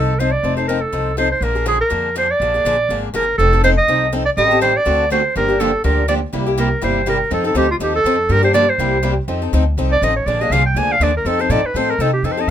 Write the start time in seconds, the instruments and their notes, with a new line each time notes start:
Already playing: upright bass C2, steel-string acoustic guitar F3 C4 D#4 A4, clarinet A4
0.20 steel-string acoustic guitar F3 C4 D#4 A4, clarinet C5
0.32 clarinet D5
0.43 upright bass F1, steel-string acoustic guitar F3 C4 D#4 A4
0.57 steel-string acoustic guitar C4 D#4 A4, clarinet C5
0.68 steel-string acoustic guitar F3 C4 D#4 A4, clarinet A#4
0.81 clarinet A4
0.92 upright bass C2, steel-string acoustic guitar F3 C4 D#4 A4
1.17 steel-string acoustic guitar F3 C4 D#4 A4, clarinet C5
1.32 clarinet C5
1.41 upright bass A#1, steel-string acoustic guitar D3 F3 A#3 D4 G#4, clarinet A#4
1.55 steel-string acoustic guitar A#3 D4 G#4
1.65 steel-string acoustic guitar D3 F3 A#3 D4 G#4, clarinet G#4
1.81 clarinet A#4
1.90 upright bass F2, steel-string acoustic guitar D3 F3 A#3 D4 G#4
2.15 steel-string acoustic guitar D3 F3 A#3 D4 G#4, clarinet C5
2.31 clarinet D5
2.40 upright bass A#1, steel-string acoustic guitar D3 F3 A#3 D4 G#4
2.54 steel-string acoustic guitar A#3 D4 G#4
2.64 upright bass A#1, steel-string acoustic guitar D3 F3 A#3 D4 G#4
2.89 upright bass G#1, steel-string acoustic guitar D3 F3 A#3 D4 G#4
3.14 upright bass G1, steel-string acoustic guitar D3 F3 A#3 D4 G#4, clarinet A#4
3.38 upright bass F1, steel-string acoustic guitar F3 C4 D#4 A4, clarinet A4
3.53 steel-string acoustic guitar C4 D#4 A4
3.64 steel-string acoustic guitar F3 C4 D#4 A4, clarinet C5
3.78 clarinet D#5
3.88 upright bass C2, steel-string acoustic guitar F3 C4 D#4 A4
4.12 steel-string acoustic guitar F3 C4 D#4 A4
4.26 clarinet D5
4.37 upright bass A1, steel-string acoustic guitar D#3 G3 C4 G4 A4, clarinet D#5
4.51 steel-string acoustic guitar C4 G4 A4
4.61 steel-string acoustic guitar D#3 G3 C4 G4 A4, clarinet C5
4.77 clarinet D5
4.85 upright bass D2, steel-string acoustic guitar D3 A3 C4 F#4 A4
5.10 steel-string acoustic guitar D3 A3 C4 F#4 A4, clarinet C5
5.35 upright bass G1, steel-string acoustic guitar D3 F3 A#3 D4 G4, clarinet A#4
5.48 steel-string acoustic guitar A#3 D4 G4
5.60 steel-string acoustic guitar D3 F3 A#3 D4 G4, clarinet A4
5.84 upright bass D2, steel-string acoustic guitar D3 F3 A#3 D4 G4, clarinet A#4
6.08 steel-string acoustic guitar D3 F3 A#3 D4 G4, clarinet D5
6.33 upright bass C2, steel-string acoustic guitar C3 G3 A#3 E4 G4
6.46 steel-string acoustic guitar A#3 E4 G4
6.58 steel-string acoustic guitar C3 G3 A#3 E4 G4, clarinet A#4
6.81 upright bass G1, steel-string acoustic guitar C3 G3 A#3 E4 G4, clarinet C5
7.06 steel-string acoustic guitar C3 G3 A#3 E4 G4, clarinet A#4
7.31 upright bass F2, steel-string acoustic guitar F3 C4 D#4 A4, clarinet A4
7.44 steel-string acoustic guitar C4 D#4 A4, clarinet A4
7.54 upright bass D2, steel-string acoustic guitar F3 C4 D#4 A4, clarinet G4
7.71 clarinet F4
7.79 upright bass D#2, steel-string acoustic guitar F3 C4 D#4 A4, clarinet G4
7.96 clarinet A4
8.04 upright bass F2, steel-string acoustic guitar F3 C4 D#4 A4
8.29 upright bass G2, steel-string acoustic guitar D3 F3 A#3 D4 G4, clarinet A#4
8.43 steel-string acoustic guitar A#3 D4 G4, clarinet C5
8.54 steel-string acoustic guitar D3 F3 A#3 D4 G4, clarinet D5
8.69 clarinet C5
8.78 upright bass C2, steel-string acoustic guitar C3 G3 A#3 E4 G4
9.03 steel-string acoustic guitar C3 G3 A#3 E4 G4
9.28 upright bass F2, steel-string acoustic guitar F3 C4 D#4 A4
9.42 steel-string acoustic guitar C4 D#4 A4
9.53 upright bass D2, steel-string acoustic guitar F3 C4 D#4 A4
9.77 upright bass C2, steel-string acoustic guitar F3 C4 D#4 A4
9.92 clarinet D5
10.02 upright bass A1, steel-string acoustic guitar F3 C4 D#4 A4, clarinet D#5
10.17 clarinet C#5
10.26 upright bass A#1, steel-string acoustic guitar D3 F3 A#3 D4 G#4, clarinet D5
10.41 steel-string acoustic guitar A#3 D4 G#4, clarinet D#5
10.50 upright bass C2, steel-string acoustic guitar D3 F3 A#3 D4 G#4, clarinet F5
10.66 clarinet G5
10.75 upright bass D2, steel-string acoustic guitar D3 F3 A#3 D4 G#4, clarinet G#5
10.92 clarinet F5
11.00 upright bass D#2, steel-string acoustic guitar D3 F3 A#3 D4 G#4, clarinet D5
11.17 clarinet A#4
11.25 upright bass F2, steel-string acoustic guitar F3 C4 D#4 A4, clarinet A4
11.39 steel-string acoustic guitar C4 D#4 A4, clarinet C5
11.49 upright bass A#2, steel-string acoustic guitar F3 C4 D#4 A4, clarinet D5
11.63 clarinet B4, muted upright bass stroke
11.74 upright bass A2, steel-string acoustic guitar F3 C4 D#4 A4, clarinet C5
11.90 clarinet A#4
11.98 upright bass C3, steel-string acoustic guitar F3 C4 D#4 A4, clarinet A4
12.13 clarinet G4
12.22 upright bass F2, steel-string acoustic guitar F3 C4 D#4 A4, clarinet A4
12.32 clarinet C5
12.37 steel-string acoustic guitar C4 D#4 A4, clarinet D#5